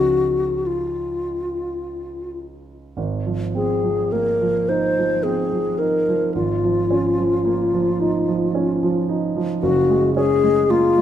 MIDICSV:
0, 0, Header, 1, 3, 480
1, 0, Start_track
1, 0, Tempo, 1156069
1, 1232, Time_signature, 3, 2, 24, 8
1, 1232, Tempo, 1132075
1, 2192, Tempo, 1102941
1, 3632, Tempo, 1075269
1, 4737, End_track
2, 0, Start_track
2, 0, Title_t, "Alto flute"
2, 0, Program_c, 0, 73
2, 0, Note_on_c, 0, 66, 57
2, 276, Note_on_c, 0, 65, 43
2, 282, Note_off_c, 0, 66, 0
2, 992, Note_off_c, 0, 65, 0
2, 1483, Note_on_c, 0, 68, 48
2, 1722, Note_on_c, 0, 70, 50
2, 1728, Note_off_c, 0, 68, 0
2, 1962, Note_on_c, 0, 72, 53
2, 1968, Note_off_c, 0, 70, 0
2, 2192, Note_on_c, 0, 68, 48
2, 2199, Note_off_c, 0, 72, 0
2, 2433, Note_on_c, 0, 70, 56
2, 2440, Note_off_c, 0, 68, 0
2, 2673, Note_off_c, 0, 70, 0
2, 2676, Note_on_c, 0, 65, 54
2, 3858, Note_off_c, 0, 65, 0
2, 4113, Note_on_c, 0, 66, 67
2, 4334, Note_off_c, 0, 66, 0
2, 4353, Note_on_c, 0, 68, 78
2, 4598, Note_on_c, 0, 65, 80
2, 4604, Note_off_c, 0, 68, 0
2, 4737, Note_off_c, 0, 65, 0
2, 4737, End_track
3, 0, Start_track
3, 0, Title_t, "Grand piano"
3, 0, Program_c, 1, 0
3, 0, Control_c, 1, 64, 127
3, 0, Note_on_c, 1, 37, 35
3, 0, Note_on_c, 1, 53, 27
3, 0, Note_on_c, 1, 56, 30
3, 0, Note_on_c, 1, 61, 26
3, 0, Note_on_c, 1, 63, 28
3, 1208, Note_off_c, 1, 37, 0
3, 1210, Note_off_c, 1, 53, 0
3, 1213, Note_off_c, 1, 56, 0
3, 1215, Note_off_c, 1, 61, 0
3, 1217, Note_off_c, 1, 63, 0
3, 1232, Note_on_c, 1, 32, 40
3, 1239, Control_c, 1, 64, 0
3, 1322, Control_c, 1, 64, 127
3, 1357, Note_on_c, 1, 53, 28
3, 1479, Note_on_c, 1, 60, 28
3, 1550, Note_off_c, 1, 53, 0
3, 1601, Note_on_c, 1, 53, 30
3, 1671, Note_off_c, 1, 60, 0
3, 1722, Note_on_c, 1, 58, 30
3, 1792, Note_off_c, 1, 53, 0
3, 1844, Note_on_c, 1, 53, 30
3, 1912, Note_off_c, 1, 58, 0
3, 1964, Note_on_c, 1, 63, 34
3, 2031, Note_off_c, 1, 53, 0
3, 2084, Note_on_c, 1, 53, 30
3, 2149, Note_off_c, 1, 63, 0
3, 2201, Note_on_c, 1, 60, 32
3, 2269, Note_off_c, 1, 53, 0
3, 2322, Note_on_c, 1, 53, 26
3, 2389, Note_off_c, 1, 60, 0
3, 2438, Note_on_c, 1, 63, 30
3, 2509, Note_off_c, 1, 53, 0
3, 2562, Note_on_c, 1, 53, 34
3, 2627, Note_off_c, 1, 63, 0
3, 2655, Note_off_c, 1, 32, 0
3, 2678, Note_off_c, 1, 53, 0
3, 2679, Control_c, 1, 64, 0
3, 2681, Note_on_c, 1, 32, 39
3, 2741, Control_c, 1, 64, 127
3, 2803, Note_on_c, 1, 53, 30
3, 2920, Note_on_c, 1, 61, 34
3, 2992, Note_off_c, 1, 53, 0
3, 3041, Note_on_c, 1, 53, 33
3, 3111, Note_off_c, 1, 61, 0
3, 3158, Note_on_c, 1, 58, 37
3, 3231, Note_off_c, 1, 53, 0
3, 3281, Note_on_c, 1, 53, 34
3, 3349, Note_off_c, 1, 58, 0
3, 3398, Note_on_c, 1, 63, 38
3, 3469, Note_off_c, 1, 53, 0
3, 3516, Note_on_c, 1, 53, 35
3, 3587, Note_off_c, 1, 63, 0
3, 3634, Note_on_c, 1, 61, 38
3, 3706, Note_off_c, 1, 53, 0
3, 3761, Note_on_c, 1, 53, 36
3, 3827, Note_off_c, 1, 61, 0
3, 3878, Note_on_c, 1, 63, 40
3, 3950, Note_off_c, 1, 53, 0
3, 4000, Note_on_c, 1, 53, 42
3, 4067, Note_off_c, 1, 63, 0
3, 4099, Note_off_c, 1, 32, 0
3, 4116, Note_off_c, 1, 53, 0
3, 4116, Note_on_c, 1, 30, 50
3, 4121, Control_c, 1, 64, 0
3, 4189, Control_c, 1, 64, 127
3, 4237, Note_on_c, 1, 56, 41
3, 4358, Note_on_c, 1, 61, 45
3, 4425, Note_off_c, 1, 56, 0
3, 4478, Note_on_c, 1, 56, 43
3, 4547, Note_off_c, 1, 61, 0
3, 4599, Note_on_c, 1, 58, 46
3, 4668, Note_off_c, 1, 56, 0
3, 4719, Note_on_c, 1, 56, 39
3, 4737, Note_off_c, 1, 30, 0
3, 4737, Note_off_c, 1, 56, 0
3, 4737, Note_off_c, 1, 58, 0
3, 4737, End_track
0, 0, End_of_file